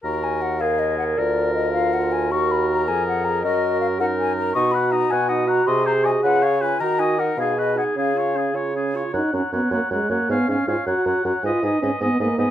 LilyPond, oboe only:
\new Staff \with { instrumentName = "Oboe" } { \time 6/8 \key ees \minor \tempo 4. = 106 bes'4. aes'4. | bes'2. | bes'2. | bes'4. bes'4. |
\key fis \major dis''8 fis''8 dis''8 fis''8 dis''8 fis''8 | dis''8 bis'8 dis''8 b'8 cis''8 b'8 | ais'8 dis''8 ais'8 gis'8 b'8 gis'8 | gis'8 cis''8 gis'8 cis''8 gis'8 cis''8 |
fis''8 fis''8 fis''8 fis''8 fis''8 fis''8 | eis''8 eis''8 eis''8 fis''8 fis''8 fis''8 | dis''8 dis''8 dis''8 dis''8 dis''8 dis''8 | }